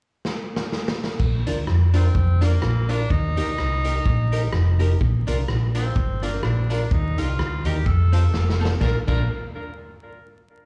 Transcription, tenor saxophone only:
1.96 2.46 C4 medium
2.44 2.92 A#3 medium
2.90 3.12 D4 loud
3.11 4.80 D#4 loud
5.77 6.20 C4 medium
6.24 6.43 A#3 medium
6.44 6.94 D4 medium
6.93 7.20 D#4 loud
7.19 7.68 F4 loud
7.66 7.88 G4 medium
7.87 8.61 A4 loud
8.81 8.96 A#4 medium
9.08 9.27 A#4 medium

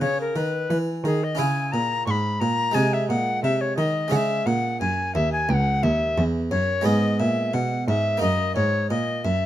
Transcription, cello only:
0.01 0.33 C#3 medium
0.36 0.68 D#3 soft
0.70 1.02 E3 medium
1.04 1.36 D#3 medium
1.39 1.71 C#3 medium
1.74 2.05 A#2 medium
2.07 2.39 G#2 medium
2.41 2.73 A#2 medium
2.75 3.07 C3 medium
3.09 3.41 A#2 medium
3.43 3.76 C3 medium
3.78 4.10 D#3 medium
4.12 4.44 C#3 medium
4.46 4.79 A#2 medium
4.81 5.13 F#2 medium
5.15 5.47 D#2 medium
5.50 5.81 C#2 medium
5.84 6.15 D#2 medium
6.18 6.50 E2 medium
6.51 6.84 F#2 medium
6.86 7.18 G#2 medium
7.20 7.52 A#2 medium
7.54 7.86 B2 medium
7.88 8.20 G#2 medium
8.22 8.54 F#2 medium
8.57 8.88 G#2 medium
8.91 9.22 A#2 medium
9.25 9.46 F#2 medium

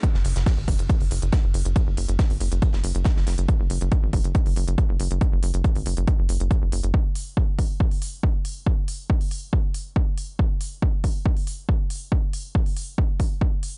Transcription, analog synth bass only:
0.14 0.23 F#1 medium
0.25 0.34 F#1 loud
0.36 0.44 F#1 loud
0.57 0.66 G#1 medium
0.68 0.77 F#1 loud
0.79 0.88 F#1 medium
1.01 1.09 F#1 medium
1.11 1.20 F#1 loud
1.22 1.31 F#1 medium
1.44 1.52 F#1 medium
1.54 1.63 F#1 loud
1.65 1.74 F#1 medium
1.87 1.95 F#1 medium
1.97 2.06 F#1 loud
2.08 2.17 F#1 medium
2.30 2.39 G#1 medium
2.40 2.50 F#1 loud
2.52 2.60 F#1 medium
2.73 2.82 F#1 medium
2.84 2.93 F#1 loud
2.95 3.03 F#1 medium
3.16 3.25 F#1 medium
3.27 3.36 F#1 loud
3.38 3.46 F#1 medium
3.60 3.68 F#1 medium
3.70 3.79 F#1 loud
3.81 3.90 F#1 medium
4.03 4.11 G#1 medium
4.13 4.22 F#1 loud
4.24 4.33 F#1 medium
4.46 4.54 F#1 medium
4.56 4.65 F#1 loud
4.68 4.76 F#1 medium
4.89 4.98 F#1 medium
5.00 5.09 F#1 loud
5.11 5.19 F#1 medium
5.32 5.41 F#1 medium
5.43 5.52 F#1 loud
5.54 5.62 F#1 medium
5.76 5.84 G#1 medium
5.86 5.95 F#1 loud
5.97 6.06 F#1 medium
6.19 6.27 F#1 medium
6.29 6.38 F#1 loud
6.40 6.49 F#1 medium
6.62 6.70 F#1 medium
6.72 6.81 F#1 loud
6.83 6.92 F#1 medium

